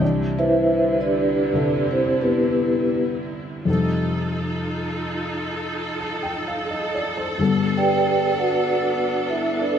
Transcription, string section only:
0, 0, Header, 1, 2, 480
1, 0, Start_track
1, 0, Tempo, 923077
1, 8, Time_signature, 4, 2, 24, 8
1, 5089, End_track
2, 0, Start_track
2, 0, Title_t, "String section"
2, 0, Program_c, 0, 48
2, 4, Note_on_c, 0, 50, 69
2, 5, Note_on_c, 0, 48, 58
2, 6, Note_on_c, 0, 64, 60
2, 1898, Note_off_c, 0, 48, 0
2, 1898, Note_off_c, 0, 50, 0
2, 1899, Note_off_c, 0, 64, 0
2, 1917, Note_on_c, 0, 63, 60
2, 1918, Note_on_c, 0, 65, 57
2, 1924, Note_on_c, 0, 69, 71
2, 3830, Note_off_c, 0, 63, 0
2, 3831, Note_off_c, 0, 65, 0
2, 3855, Note_on_c, 0, 59, 61
2, 3856, Note_on_c, 0, 62, 60
2, 5089, Note_off_c, 0, 59, 0
2, 5089, Note_off_c, 0, 62, 0
2, 5089, Note_off_c, 0, 69, 0
2, 5089, End_track
0, 0, End_of_file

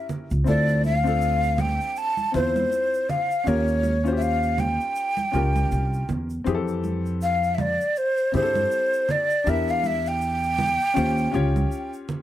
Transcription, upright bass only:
0, 0, Header, 1, 2, 480
1, 0, Start_track
1, 0, Key_signature, -1, "major"
1, 0, Tempo, 750000
1, 296, Time_signature, 4, 2, 24, 8
1, 7821, End_track
2, 0, Start_track
2, 0, Title_t, "Upright bass"
2, 0, Program_c, 0, 32
2, 200, Note_on_c, 0, 37, 87
2, 278, Note_off_c, 0, 37, 0
2, 301, Note_on_c, 0, 38, 96
2, 1134, Note_off_c, 0, 38, 0
2, 1502, Note_on_c, 0, 40, 84
2, 1691, Note_off_c, 0, 40, 0
2, 2220, Note_on_c, 0, 39, 94
2, 3054, Note_off_c, 0, 39, 0
2, 3421, Note_on_c, 0, 37, 75
2, 3610, Note_off_c, 0, 37, 0
2, 3660, Note_on_c, 0, 36, 84
2, 3849, Note_off_c, 0, 36, 0
2, 3900, Note_on_c, 0, 40, 78
2, 4089, Note_off_c, 0, 40, 0
2, 4137, Note_on_c, 0, 41, 100
2, 4972, Note_off_c, 0, 41, 0
2, 5340, Note_on_c, 0, 43, 77
2, 5529, Note_off_c, 0, 43, 0
2, 6059, Note_on_c, 0, 40, 100
2, 6893, Note_off_c, 0, 40, 0
2, 7017, Note_on_c, 0, 39, 102
2, 7208, Note_off_c, 0, 39, 0
2, 7258, Note_on_c, 0, 37, 85
2, 7448, Note_off_c, 0, 37, 0
2, 7821, End_track
0, 0, End_of_file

